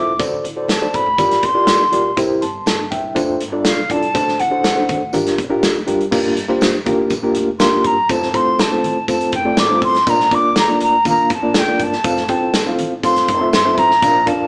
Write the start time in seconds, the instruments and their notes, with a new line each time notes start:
Already playing: upright bass C2, reed electric piano F4 A4 C5 E5, flute D6
0.19 upright bass D2, reed electric piano D3 F#4 A4 C5 D5, kick, closed hi-hat, tambourine, muted conga
0.44 upright bass A1, closed hi-hat, muted conga
0.56 reed electric piano F#4 A4 C5 D5
0.68 flute A5, snare, closed hi-hat, tambourine, high conga
0.81 reed electric piano F#4 A4 C5 D5
0.94 upright bass A1, flute B5, kick, closed hi-hat
1.06 upright bass D2
1.18 upright bass G1, reed electric piano G2 F4 G4 A#4 D5, kick, closed hi-hat, tambourine, muted conga, low conga
1.31 snare, closed hi-hat
1.43 upright bass A1, flute C6, kick, closed hi-hat
1.55 reed electric piano F4 G4 A#4 D5
1.67 upright bass A1, snare, closed hi-hat, tambourine, high conga
1.92 upright bass A#1, reed electric piano F4 G4 A#4 D5, closed hi-hat, high conga
2.17 upright bass C2, reed electric piano C3 E4 G4 A#4 C5, kick, closed hi-hat, tambourine, muted conga
2.41 upright bass G1, reed electric piano A5 C6, closed hi-hat, muted conga
2.66 upright bass G1, reed electric piano A5, snare, closed hi-hat, tambourine, high conga
2.91 upright bass C2, reed electric piano E5 G5, kick, closed hi-hat
3.15 upright bass F1, reed electric piano D4 F4 A4 C5, kick, closed hi-hat, tambourine, muted conga
3.40 upright bass G1, closed hi-hat
3.52 reed electric piano D4 F4 A4 D5
3.65 upright bass A#1, flute F5, snare, closed hi-hat, tambourine, high conga
3.90 upright bass C2, reed electric piano D4 F4 A4 D5, flute A5, kick, closed hi-hat, high conga
4.02 closed hi-hat
4.14 upright bass D2, reed electric piano D3 D4 F#4 A4 C5, kick, closed hi-hat, tambourine, muted conga
4.28 snare
4.39 upright bass A1, flute F#5, closed hi-hat, muted conga
4.50 reed electric piano D4 F#4 A4 C5
4.64 upright bass A1, snare, closed hi-hat, tambourine, high conga
4.75 reed electric piano D4 F#4 A4 C5
4.89 upright bass D2, kick, closed hi-hat, low conga
5.13 upright bass G1, reed electric piano G2 D4 F4 G4 A#4, closed hi-hat, tambourine, muted conga, low conga
5.26 snare, closed hi-hat
5.38 upright bass A#1, kick, closed hi-hat
5.50 reed electric piano D4 F4 G4 A#4
5.62 upright bass D2, snare, closed hi-hat, tambourine, high conga
5.87 upright bass G2, reed electric piano D4 F4 G4 A#4, closed hi-hat, high conga
6.00 closed hi-hat
6.11 upright bass G1, reed electric piano G2 A#3 D4 F4 G4 A#4, kick, crash, tambourine, muted conga
6.37 closed hi-hat, muted conga
6.48 upright bass A1, reed electric piano A#3 D4 F4 G4 C5
6.61 upright bass G1, snare, closed hi-hat, tambourine, high conga
6.86 upright bass A1, reed electric piano A#3 D4 F4 G4 A#4, kick, closed hi-hat, low conga
7.10 upright bass A#1, kick, closed hi-hat, tambourine, muted conga
7.23 reed electric piano A#3 D4 F4 G4 A#4
7.34 upright bass F1, closed hi-hat
7.59 reed electric piano A#3 D4 F4 G4 A#4, flute C6, snare, closed hi-hat, tambourine, high conga
7.84 upright bass G1, flute A#5, kick, closed hi-hat, high conga
8.09 upright bass F1, reed electric piano A3 C4 F4 A4 C5, flute A5, kick, closed hi-hat, tambourine, muted conga
8.23 snare
8.34 upright bass C2, reed electric piano A3 C4 F4 A4 C5, flute C6, kick, closed hi-hat
8.59 upright bass A1, flute A5, snare, closed hi-hat, tambourine, high conga
8.71 reed electric piano A3 C4 F4 A4 C5
8.84 upright bass A1, closed hi-hat, low conga
9.08 upright bass F1, reed electric piano A3 C4 F4 A4 C5, flute A5, kick, closed hi-hat, tambourine, muted conga
9.21 closed hi-hat
9.32 upright bass F1, flute G5, kick, closed hi-hat
9.45 reed electric piano A3 C4 F4 A4 D5
9.57 upright bass G1, flute D6, snare, closed hi-hat, tambourine, high conga
9.70 reed electric piano A3 C4 F4 A4 C5, high conga
9.82 upright bass A1, flute C6, kick, open hi-hat, high conga
9.94 snare, closed hi-hat
10.07 upright bass A#1, reed electric piano A#2 A#3 D4 F4 A#4 D5, flute A#5, kick, closed hi-hat, tambourine, muted conga
10.20 snare
10.31 upright bass F2, reed electric piano A#3 D4 F4 A#4 D5, flute D6, kick, closed hi-hat, muted conga
10.56 upright bass D2, flute A#5, snare, closed hi-hat, tambourine, high conga
10.68 reed electric piano A#3 D4 F4 A#4 D5
10.80 upright bass D2, flute A#5, closed hi-hat
11.05 upright bass A#1, reed electric piano A#3 D4 F4 A#4 F5, flute A#5, kick, closed hi-hat, tambourine, muted conga, low conga
11.30 upright bass A#1, kick, closed hi-hat
11.34 flute A5
11.43 reed electric piano A#3 D4 F4 A#4 D5
11.54 upright bass F1, snare, closed hi-hat, tambourine, high conga
11.59 flute G5
11.68 reed electric piano A#3 D4 F4 A#4 D5, high conga
11.79 upright bass G1, flute A5, kick, closed hi-hat, high conga
11.93 snare
12.04 upright bass F1, reed electric piano C4 F4 A4 C5 F5, kick, closed hi-hat, tambourine, muted conga
12.17 snare
12.28 upright bass C2, reed electric piano C4 F4 A4 C5 G5, kick, closed hi-hat
12.32 flute A5
12.54 upright bass A1, snare, closed hi-hat, tambourine, high conga
12.66 reed electric piano C4 F4 A4 C5 F5
12.78 upright bass A1, closed hi-hat, low conga
13.03 upright bass F1, reed electric piano C4 F4 A4 C5 F5, flute C6, kick, closed hi-hat, tambourine, muted conga
13.16 snare, closed hi-hat
13.28 upright bass F1, kick, closed hi-hat
13.40 reed electric piano C4 F4 A4 C5 E5
13.53 upright bass G1, flute C6, snare, closed hi-hat, tambourine, high conga
13.65 reed electric piano C4 F4 A4 C5 E5, high conga
13.78 upright bass A1, flute A#5, kick, closed hi-hat, high conga
13.91 snare
14.02 upright bass A#1, reed electric piano A#2 D4 F4 A#4 D5 F5, kick, closed hi-hat, tambourine, muted conga
14.26 upright bass F2, reed electric piano D4 F4 A#4 D5 F5, flute A5, kick, closed hi-hat, muted conga